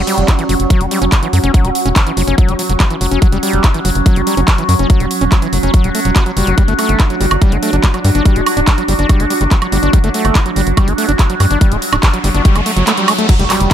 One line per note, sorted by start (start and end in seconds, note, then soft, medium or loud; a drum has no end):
0.00 13.28 F#3 medium
0.00 6.58 C#4 medium
0.00 6.58 F#4 medium
0.00 13.28 F#4 medium
0.00 6.58 F#5 medium
0.00 6.58 C#6 medium
0.07 0.30 G3 medium
0.07 open hi-hat loud
0.18 0.24 F#1 medium
0.18 closed hi-hat medium
0.28 0.34 F#4 medium
0.28 kick loud
0.28 clap loud
0.28 closed hi-hat medium
0.39 0.44 E3 medium
0.39 closed hi-hat medium
0.49 0.56 F#1 loud
0.49 0.55 F#3 medium
0.49 open hi-hat loud
0.60 0.66 F#1 medium
0.60 closed hi-hat medium
0.70 0.82 F#3 loud
0.70 kick loud
0.70 closed hi-hat medium
0.81 0.87 F#1 medium
0.81 0.86 G3 medium
0.81 closed hi-hat medium
0.91 0.99 G3 medium
0.91 open hi-hat loud
1.02 1.08 F#1 medium
1.02 1.05 C#4 loud
1.02 closed hi-hat medium
1.12 kick loud
1.12 clap loud
1.12 closed hi-hat medium
1.23 1.28 E3 medium
1.23 closed hi-hat medium
1.33 1.40 F#2 medium
1.33 1.39 F#3 medium
1.33 open hi-hat loud
1.44 1.50 F#1 medium
1.44 1.52 C#4 medium
1.44 closed hi-hat medium
1.54 1.66 F#3 medium
1.54 kick loud
1.54 closed hi-hat medium
1.65 1.71 E1 medium
1.65 1.70 G3 medium
1.65 closed hi-hat medium
1.75 open hi-hat loud
1.86 1.92 E1 medium
1.86 1.89 C#4 loud
1.86 closed hi-hat medium
1.96 2.02 F#3 medium
1.96 kick loud
1.96 clap loud
1.96 closed hi-hat medium
2.07 2.12 E3 medium
2.07 closed hi-hat medium
2.17 2.24 F#1 loud
2.17 2.23 F#3 medium
2.17 open hi-hat loud
2.28 2.34 F#1 medium
2.28 2.36 C#4 medium
2.28 closed hi-hat medium
2.38 2.50 F#3 medium
2.38 kick loud
2.38 closed hi-hat medium
2.48 2.55 F#1 medium
2.48 2.54 G3 medium
2.48 closed hi-hat medium
2.59 2.62 F#3 medium
2.59 open hi-hat loud
2.69 2.76 F#1 medium
2.69 2.73 F#3 medium
2.69 closed hi-hat medium
2.80 2.85 F#3 medium
2.80 kick loud
2.80 clap loud
2.80 closed hi-hat medium
2.90 2.96 E3 medium
2.90 closed hi-hat medium
3.01 3.07 F#1 loud
3.01 3.06 F#3 medium
3.01 open hi-hat loud
3.11 3.18 F#1 medium
3.11 3.20 C#4 medium
3.11 closed hi-hat medium
3.22 3.27 F#3 loud
3.22 kick loud
3.22 closed hi-hat medium
3.32 3.39 F#1 medium
3.32 3.38 G3 loud
3.32 closed hi-hat medium
3.43 3.65 G3 medium
3.43 open hi-hat loud
3.53 3.60 F#1 medium
3.53 closed hi-hat medium
3.64 3.69 F#4 medium
3.64 kick loud
3.64 clap loud
3.64 closed hi-hat medium
3.74 3.80 E3 medium
3.74 closed hi-hat medium
3.85 3.91 F#1 loud
3.85 3.90 F#3 medium
3.85 open hi-hat loud
3.95 4.02 F#1 medium
3.95 closed hi-hat medium
4.06 4.18 F#3 loud
4.06 kick loud
4.06 closed hi-hat medium
4.16 4.23 F#1 medium
4.16 4.22 G3 medium
4.16 closed hi-hat medium
4.27 4.35 G3 medium
4.27 open hi-hat loud
4.37 4.44 F#1 medium
4.37 4.41 C#4 loud
4.37 closed hi-hat medium
4.48 kick loud
4.48 clap loud
4.48 closed hi-hat medium
4.58 4.64 E3 medium
4.58 closed hi-hat soft
4.69 4.75 F#2 medium
4.69 4.74 F#3 medium
4.69 open hi-hat loud
4.79 4.86 F#1 medium
4.79 4.88 C#4 medium
4.79 closed hi-hat medium
4.90 5.02 F#3 medium
4.90 kick loud
4.90 closed hi-hat medium
5.00 5.07 E1 medium
5.00 5.06 G3 medium
5.00 closed hi-hat soft
5.11 open hi-hat loud
5.21 5.28 E1 medium
5.21 5.25 C#4 loud
5.21 closed hi-hat soft
5.32 5.37 F#3 medium
5.32 kick loud
5.32 clap loud
5.32 closed hi-hat medium
5.42 5.48 E3 medium
5.42 closed hi-hat soft
5.53 5.59 F#1 loud
5.53 5.58 F#3 medium
5.53 open hi-hat loud
5.63 5.70 F#1 medium
5.63 5.71 C#4 medium
5.63 closed hi-hat soft
5.74 5.86 F#3 medium
5.74 kick loud
5.74 closed hi-hat medium
5.84 5.91 E1 medium
5.84 5.90 G3 medium
5.84 closed hi-hat medium
5.95 6.00 A3 medium
5.95 open hi-hat loud
6.05 6.12 E1 medium
6.05 6.11 F#3 medium
6.05 closed hi-hat medium
6.16 6.24 F#4 medium
6.16 kick loud
6.16 clap loud
6.16 closed hi-hat medium
6.26 6.32 F#3 medium
6.26 closed hi-hat soft
6.37 6.43 F#1 loud
6.37 6.49 G3 medium
6.37 open hi-hat loud
6.47 6.54 F#1 medium
6.47 6.55 F#3 loud
6.47 closed hi-hat soft
6.58 6.63 G3 loud
6.58 13.29 D4 medium
6.58 kick loud
6.58 closed hi-hat medium
6.68 6.75 G1 medium
6.68 6.74 A3 loud
6.68 closed hi-hat medium
6.79 7.01 A3 medium
6.79 open hi-hat loud
6.79 high woodblock soft
6.89 6.96 G1 medium
6.89 closed hi-hat medium
7.00 7.05 G4 medium
7.00 kick loud
7.00 clap loud
7.00 closed hi-hat medium
7.10 7.16 F#3 medium
7.10 closed hi-hat medium
7.21 7.27 G1 loud
7.21 7.26 G3 medium
7.21 open hi-hat loud
7.31 7.38 G1 medium
7.31 closed hi-hat medium
7.31 high woodblock medium
7.42 7.54 G3 loud
7.42 kick loud
7.42 closed hi-hat medium
7.46 13.29 D6 medium
7.52 7.59 G1 medium
7.52 7.58 A3 medium
7.52 closed hi-hat medium
7.63 7.71 A3 medium
7.63 open hi-hat loud
7.73 7.80 G1 medium
7.73 7.76 D4 loud
7.73 closed hi-hat medium
7.84 7.87 G3 medium
7.84 kick loud
7.84 clap loud
7.84 closed hi-hat medium
7.94 7.99 F#3 medium
7.94 closed hi-hat soft
7.94 high woodblock soft
8.04 8.11 G2 loud
8.04 8.10 G3 medium
8.04 open hi-hat loud
8.15 8.21 G1 medium
8.15 8.23 D4 medium
8.15 closed hi-hat medium
8.25 8.37 G3 medium
8.25 kick loud
8.25 closed hi-hat medium
8.36 8.42 D1 medium
8.36 8.41 A3 medium
8.36 closed hi-hat medium
8.46 open hi-hat loud
8.46 high woodblock medium
8.57 8.63 D1 medium
8.57 8.60 D4 loud
8.57 closed hi-hat medium
8.67 8.73 G3 medium
8.67 kick loud
8.67 clap loud
8.67 closed hi-hat medium
8.78 8.83 F#3 medium
8.78 closed hi-hat medium
8.88 8.95 G1 loud
8.88 8.94 G3 medium
8.88 open hi-hat loud
8.99 9.05 G1 medium
8.99 9.07 D4 medium
8.99 closed hi-hat medium
9.09 9.21 G3 medium
9.09 kick loud
9.09 closed hi-hat medium
9.09 high woodblock soft
9.20 9.26 G1 medium
9.20 9.25 A3 medium
9.20 closed hi-hat medium
9.30 9.34 G3 medium
9.30 open hi-hat loud
9.41 9.47 G1 medium
9.41 9.44 G3 medium
9.41 closed hi-hat medium
9.51 9.57 G3 medium
9.51 kick loud
9.51 clap loud
9.51 closed hi-hat medium
9.62 9.67 F#3 medium
9.62 closed hi-hat medium
9.62 high woodblock medium
9.72 9.79 G1 loud
9.72 9.78 G3 medium
9.72 open hi-hat loud
9.83 9.89 G1 medium
9.83 9.91 D4 medium
9.83 closed hi-hat medium
9.93 9.99 G3 loud
9.93 kick loud
9.93 closed hi-hat medium
9.93 riser medium
10.04 10.10 G1 medium
10.04 10.09 A3 loud
10.04 closed hi-hat medium
10.14 10.37 A3 medium
10.14 open hi-hat loud
10.25 10.31 G1 medium
10.25 closed hi-hat medium
10.25 high woodblock soft
10.35 10.41 G4 medium
10.35 kick loud
10.35 clap loud
10.35 closed hi-hat medium
10.46 10.51 F#3 medium
10.46 closed hi-hat medium
10.56 10.63 G1 loud
10.56 10.62 G3 medium
10.56 open hi-hat loud
10.67 10.73 G1 medium
10.67 closed hi-hat medium
10.77 10.89 G3 loud
10.77 kick loud
10.77 closed hi-hat medium
10.77 high woodblock medium
10.88 10.94 G1 medium
10.88 10.93 A3 medium
10.88 closed hi-hat medium
10.98 11.06 A3 medium
10.98 open hi-hat loud
11.09 11.15 G1 medium
11.09 11.12 D4 loud
11.09 closed hi-hat medium
11.19 11.22 G3 medium
11.19 kick loud
11.19 clap loud
11.19 closed hi-hat medium
11.30 11.35 F#3 medium
11.30 closed hi-hat medium
11.40 11.47 G2 loud
11.40 11.46 G3 medium
11.40 open hi-hat loud
11.40 high woodblock soft
11.51 11.57 G1 medium
11.51 11.59 D4 medium
11.51 closed hi-hat medium
11.61 11.73 G3 medium
11.61 kick loud
11.61 closed hi-hat medium
11.72 11.78 D1 medium
11.72 11.77 A3 medium
11.72 closed hi-hat medium
11.82 open hi-hat loud
11.93 11.99 D1 medium
11.93 11.96 D4 loud
11.93 closed hi-hat medium
11.93 high woodblock medium
12.03 12.09 G3 medium
12.03 kick loud
12.03 clap loud
12.03 closed hi-hat medium
12.14 12.19 F#3 medium
12.14 closed hi-hat medium
12.24 12.31 G1 loud
12.24 12.30 G3 medium
12.24 open hi-hat loud
12.35 12.41 G1 medium
12.35 12.43 D4 medium
12.35 closed hi-hat medium
12.45 12.57 G3 medium
12.45 kick loud
12.45 closed hi-hat medium
12.55 12.62 G1 medium
12.55 12.61 A3 medium
12.55 closed hi-hat medium
12.55 high woodblock soft
12.66 12.71 A3 medium
12.66 open hi-hat loud
12.76 12.83 G1 medium
12.76 12.85 F#3 medium
12.76 closed hi-hat medium
12.87 12.92 A3 loud
12.87 clap loud
12.87 closed hi-hat medium
12.97 13.09 G3 medium
12.97 closed hi-hat medium
13.08 13.13 A3 medium
13.08 open hi-hat loud
13.08 high woodblock medium
13.18 13.27 A3 loud
13.18 closed hi-hat medium
13.29 13.74 F#3 medium
13.29 13.34 F#3 loud
13.29 13.74 F#4 medium
13.29 kick loud
13.29 closed hi-hat medium
13.29 crash loud
13.29 impact medium
13.39 13.46 F#1 medium
13.39 13.45 G3 loud
13.39 closed hi-hat medium
13.50 13.72 G3 medium
13.50 clap medium
13.50 open hi-hat loud
13.50 high woodblock soft
13.60 13.67 F#1 medium
13.60 closed hi-hat medium